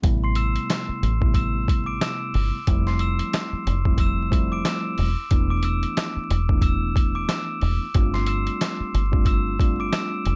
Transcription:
0.02 0.56 A1 loud
0.02 1.10 C3 loud
0.02 1.10 G3 medium
0.02 1.10 A3 medium
0.02 1.11 B3 medium
0.02 1.11 E4 loud
0.02 kick loud
0.02 closed hi-hat medium
0.24 0.36 C6 medium
0.24 0.36 C7 medium
0.35 1.31 E6 medium
0.35 1.32 E7 medium
0.35 closed hi-hat medium
0.56 closed hi-hat medium
0.70 snare loud
0.70 closed hi-hat medium
0.89 muted fingered electric bass stroke medium
1.03 1.98 A1 medium
1.03 closed hi-hat medium
1.20 2.57 C3 loud
1.20 2.57 G3 medium
1.20 2.57 A3 medium
1.20 2.57 B3 medium
1.20 2.57 E4 loud
1.20 kick medium
1.34 1.84 E6 medium
1.34 1.84 E7 medium
1.34 kick loud
1.34 closed hi-hat medium
1.68 kick loud
1.68 closed hi-hat medium
1.86 1.99 D6 medium
1.86 2.00 D7 medium
2.01 2.31 E6 medium
2.01 2.32 E7 medium
2.01 snare loud
2.01 closed hi-hat medium
2.34 2.50 G1 medium
2.34 open hi-hat soft
2.67 3.20 F1 loud
2.67 3.75 F3 loud
2.67 3.75 G3 medium
2.67 3.75 A3 medium
2.67 3.75 C4 medium
2.67 3.75 E4 loud
2.67 kick loud
2.67 closed hi-hat medium
2.87 2.99 C6 medium
2.87 3.00 C7 medium
2.87 snare soft
2.99 3.95 E6 medium
2.99 3.96 E7 medium
2.99 closed hi-hat medium
3.19 closed hi-hat medium
3.33 snare loud
3.33 closed hi-hat medium
3.53 muted fingered electric bass stroke soft
3.67 4.61 F1 loud
3.67 closed hi-hat medium
3.85 4.29 F3 loud
3.85 4.29 G3 medium
3.85 4.29 A3 medium
3.85 4.29 C4 medium
3.85 4.29 E4 loud
3.85 kick medium
3.98 4.48 E6 medium
3.98 4.49 E7 medium
3.98 kick loud
3.98 closed hi-hat loud
4.31 5.09 F3 loud
4.31 5.09 G3 medium
4.31 5.09 A3 medium
4.31 5.09 C4 medium
4.31 5.09 E4 loud
4.31 kick loud
4.31 closed hi-hat medium
4.52 4.64 D6 medium
4.52 4.65 D7 medium
4.65 4.95 E6 medium
4.65 4.96 E7 medium
4.65 snare loud
4.65 closed hi-hat medium
4.98 5.13 E1 medium
4.98 open hi-hat soft
5.31 5.84 E1 loud
5.31 6.38 E3 medium
5.31 6.38 A3 medium
5.31 6.39 B3 medium
5.31 6.39 D4 medium
5.31 6.39 E4 loud
5.31 kick loud
5.31 closed hi-hat medium
5.50 5.63 D6 medium
5.50 5.63 D7 medium
5.63 6.59 E6 medium
5.63 6.60 E7 medium
5.63 closed hi-hat medium
5.83 closed hi-hat medium
5.97 snare loud
5.97 closed hi-hat medium
6.16 muted fingered electric bass stroke soft
6.30 7.25 E1 medium
6.30 closed hi-hat medium
6.49 7.85 E3 loud
6.49 7.85 A3 medium
6.49 7.85 B3 medium
6.49 7.85 D4 medium
6.49 7.85 E4 loud
6.49 kick medium
6.61 7.11 E6 medium
6.61 7.12 E7 medium
6.61 kick medium
6.61 closed hi-hat loud
6.96 kick loud
6.96 closed hi-hat medium
7.15 7.28 D6 medium
7.15 7.28 D7 medium
7.29 7.58 E6 medium
7.29 7.59 E7 medium
7.29 snare loud
7.29 closed hi-hat medium
7.61 7.77 E1 loud
7.61 open hi-hat soft
7.94 8.48 G1 loud
7.94 9.02 G3 loud
7.94 9.02 A3 medium
7.94 9.02 C4 medium
7.94 9.02 D4 medium
7.94 9.03 F4 loud
7.94 kick loud
7.94 closed hi-hat medium
8.14 8.26 C6 medium
8.14 8.27 C7 medium
8.14 snare soft
8.26 9.23 E6 medium
8.26 9.23 E7 medium
8.26 closed hi-hat medium
8.47 closed hi-hat medium
8.61 snare loud
8.61 closed hi-hat medium
8.80 muted fingered electric bass stroke soft
8.94 9.89 G1 loud
8.94 closed hi-hat medium
9.11 9.56 G3 loud
9.11 9.56 A3 medium
9.11 9.56 C4 medium
9.11 9.56 D4 loud
9.11 9.56 F4 loud
9.11 kick medium
9.25 9.75 E6 medium
9.25 9.76 E7 medium
9.25 kick loud
9.25 closed hi-hat medium
9.60 10.36 G3 medium
9.60 10.36 A3 medium
9.60 10.36 C4 medium
9.60 10.36 D4 medium
9.60 10.36 F4 loud
9.60 kick loud
9.60 closed hi-hat medium
9.80 9.92 D6 medium
9.80 9.92 D7 medium
9.92 10.22 E6 medium
9.92 10.23 E7 medium
9.92 snare loud
9.92 closed hi-hat medium
10.25 10.36 F1 loud
10.25 closed hi-hat medium

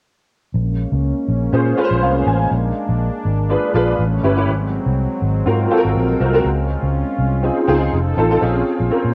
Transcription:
0.54 0.84 A#1 loud
0.54 3.95 G#3 medium
0.54 3.95 A#3 medium
0.54 2.49 C#4 medium
0.92 1.12 C#2 medium
1.28 1.48 A#1 medium
1.52 1.72 A#2 medium
1.52 1.72 C#4 medium
1.52 1.72 F4 medium
1.52 1.72 G#4 medium
1.52 1.72 C5 medium
1.77 2.16 C#4 medium
1.77 2.16 F4 medium
1.77 2.16 G#4 medium
1.77 1.84 B4 medium
1.84 2.19 C5 loud
1.90 2.02 A#1 medium
2.02 2.21 C2 medium
2.02 2.25 F5 medium
2.26 2.46 A1 medium
2.26 2.73 G#5 medium
2.51 2.71 A#1 medium
2.51 3.97 D4 medium
2.89 3.08 A#1 medium
3.25 3.55 G#1 medium
3.49 3.69 D4 medium
3.49 3.69 F4 medium
3.49 3.69 G#4 medium
3.49 3.69 B4 medium
3.74 3.94 A#1 medium
3.74 3.99 D4 medium
3.74 3.99 F4 medium
3.74 3.99 G#4 medium
3.74 3.99 B4 loud
3.99 4.18 A1 medium
3.99 4.48 G3 medium
3.99 4.48 A3 medium
3.99 4.48 C#4 medium
4.23 4.48 G1 medium
4.23 4.33 C#4 medium
4.23 4.34 E4 medium
4.23 4.34 G4 medium
4.23 4.34 B4 medium
4.37 4.48 C#4 medium
4.37 4.48 E4 medium
4.37 4.48 G4 medium
4.37 4.48 B4 medium
4.48 4.78 G#1 loud
4.48 6.43 F#3 medium
4.48 7.89 G#3 medium
4.48 8.38 C4 medium
4.86 5.06 C2 medium
5.22 5.41 G#1 medium
5.46 5.66 G#2 loud
5.46 5.65 C4 medium
5.46 5.66 F4 medium
5.46 5.66 F#4 medium
5.46 5.66 A#4 medium
5.70 6.09 C4 medium
5.70 6.10 F4 medium
5.70 6.10 F#4 medium
5.70 5.78 A4 medium
5.77 6.13 A#4 loud
5.85 5.93 G#1 medium
5.95 6.15 A#1 medium
6.20 6.40 C2 medium
6.20 6.30 C4 medium
6.20 6.30 F4 medium
6.20 6.31 F#4 medium
6.20 6.31 A#4 medium
6.33 6.45 C4 medium
6.33 6.45 F4 medium
6.33 6.45 F#4 medium
6.33 6.45 A#4 loud
6.44 6.75 C#2 medium
6.44 7.91 C#4 medium
6.44 7.91 F4 medium
6.82 7.02 C#2 medium
7.18 7.49 C2 medium
7.43 7.62 C4 medium
7.43 7.63 D#4 medium
7.43 7.63 F4 medium
7.43 7.63 G#4 medium
7.67 7.87 C#2 medium
7.67 7.92 C4 medium
7.67 7.92 D#4 medium
7.67 7.93 F4 medium
7.67 7.93 G#4 loud
7.92 8.12 F1 medium
7.92 8.41 F3 medium
7.92 8.41 D#4 medium
7.92 8.41 A4 medium
8.17 8.37 A1 medium
8.17 8.27 C4 medium
8.17 8.27 D#4 medium
8.17 8.28 F4 medium
8.17 8.28 A4 medium
8.30 8.39 C4 medium
8.30 8.42 D#4 medium
8.30 8.40 F4 medium
8.30 8.42 A4 medium
8.41 8.61 A#1 medium
8.41 8.80 C4 medium
8.41 8.80 C#4 medium
8.41 8.81 F4 medium
8.41 8.81 G#4 medium
8.80 8.89 A#1 medium
8.90 9.14 C4 medium
8.90 9.14 C#4 medium
8.90 9.14 F4 medium
8.90 9.14 A#4 medium
8.90 muted fingered electric bass stroke soft
9.05 9.13 A#2 medium

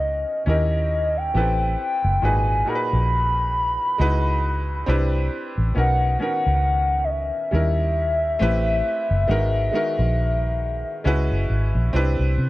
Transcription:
0.00 0.24 C#2 medium
0.00 0.47 B3 medium
0.00 0.46 C#4 medium
0.00 0.47 D#4 medium
0.00 0.47 F#4 medium
0.00 0.48 A#4 medium
0.00 0.43 D#5 medium
0.46 1.31 D#2 medium
0.46 1.22 C#4 medium
0.46 1.22 D#4 medium
0.46 1.22 E4 medium
0.46 1.23 G4 medium
0.46 1.23 A#4 medium
0.46 1.19 D#5 medium
1.17 1.79 G5 loud
1.34 1.75 A1 loud
1.34 1.41 B3 medium
1.34 2.10 E4 medium
1.34 2.11 G4 medium
1.34 2.11 A4 medium
1.34 2.11 B4 medium
1.40 2.13 C4 medium
1.80 2.25 G5 loud
2.04 2.21 F#1 medium
2.22 2.63 G#1 loud
2.22 2.60 A#2 medium
2.22 2.60 D#4 medium
2.22 2.61 F#4 medium
2.22 2.61 G#4 medium
2.22 2.61 B4 medium
2.22 2.70 G#5 loud
2.66 3.98 A#2 medium
2.66 3.98 D#4 medium
2.66 3.99 F#4 medium
2.66 4.00 G#4 medium
2.66 2.75 A#4 medium
2.66 5.32 B5 loud
2.75 4.00 B4 medium
2.93 3.77 A#1 medium
3.98 4.83 C#2 loud
3.98 4.74 G#3 medium
3.98 4.75 D#4 medium
3.98 4.75 E4 medium
3.98 4.75 F#4 medium
3.98 4.76 B4 loud
4.86 5.28 C2 medium
4.86 5.62 C4 medium
4.86 5.63 D4 medium
4.86 5.63 E4 medium
4.86 5.64 G4 medium
4.86 5.64 B4 loud
5.58 5.74 A1 medium
5.75 6.16 B1 medium
5.75 6.13 B3 medium
5.75 6.13 C#4 medium
5.75 6.14 D#4 medium
5.75 6.14 F#4 medium
5.75 6.14 A#4 medium
5.75 6.18 F#5 loud
6.19 7.52 D#3 medium
6.19 7.51 B3 medium
6.19 7.51 C#4 medium
6.19 7.53 F#4 medium
6.19 7.53 A#4 medium
6.19 7.06 F#5 loud
6.46 7.30 C#2 medium
7.04 7.11 D#5 medium
7.10 11.94 E5 loud
7.51 8.37 D#2 loud
7.51 8.27 G3 medium
7.51 8.28 C#4 medium
7.51 8.28 D#4 medium
7.51 8.28 E4 medium
7.51 8.29 A#4 medium
8.39 8.81 A1 loud
8.39 9.15 A3 medium
8.39 9.16 C4 medium
8.39 9.16 E4 medium
8.39 9.16 G4 medium
8.39 9.17 B4 loud
9.11 9.27 F#1 medium
9.28 9.69 G#1 loud
9.28 9.66 D#3 medium
9.28 9.66 G#3 medium
9.28 9.66 B3 medium
9.28 9.67 F#4 medium
9.28 9.67 A#4 loud
9.72 11.05 D#3 medium
9.72 11.03 G#3 medium
9.72 11.05 B3 medium
9.72 11.05 F#4 medium
9.72 11.06 A#4 loud
9.99 10.83 A#1 loud
11.04 11.28 C#2 loud
11.04 11.80 G#3 medium
11.04 11.80 C#4 medium
11.04 11.81 E4 medium
11.04 11.81 F#4 medium
11.04 11.82 B4 loud
11.31 11.48 F#1 medium
11.50 11.72 G#1 medium
11.75 11.91 A#1 loud
11.93 12.17 C2 medium
11.93 12.49 C4 medium
11.93 12.49 D4 medium
11.93 12.49 E4 medium
11.93 12.49 G4 medium
11.93 12.49 B4 loud
12.19 12.36 C2 medium
12.38 12.49 C3 medium

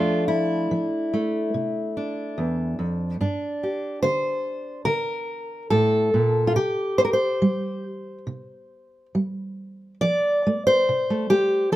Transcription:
0.00 0.64 F2 medium
0.00 0.70 F3 soft
0.00 1.12 A3 soft
0.00 1.96 D4 soft
0.00 0.28 F4 medium
0.28 2.77 E4 medium
0.71 1.45 F3 medium
1.14 3.15 A3 soft
1.54 2.28 C3 medium
1.97 3.16 D4 soft
2.38 2.78 E2 medium
2.79 3.20 F2 medium
3.21 3.95 G2 medium
3.21 6.47 D4 medium
3.63 4.02 G4 soft
4.03 4.78 D3 medium
4.03 4.85 C5 loud
4.85 5.62 D3 medium
4.85 5.70 A#4 loud
5.70 6.13 A2 medium
5.70 6.55 A4 medium
6.14 6.56 A#2 medium
6.47 6.55 F4 medium
6.56 7.32 C3 medium
6.56 7.83 G4 medium
6.98 7.04 C5 medium
7.05 7.12 A#4 medium
7.13 10.01 C5 medium
7.42 8.18 G3 medium
8.27 9.06 C3 medium
9.15 9.94 G3 medium
10.01 10.79 F3 medium
10.01 10.66 D5 loud
10.47 11.09 A3 medium
10.67 11.76 C5 loud
10.89 11.63 C3 medium
11.10 11.30 A3 soft
11.30 11.76 A3 medium
11.30 11.71 G4 medium
11.72 11.76 F3 medium
11.72 11.76 A4 medium

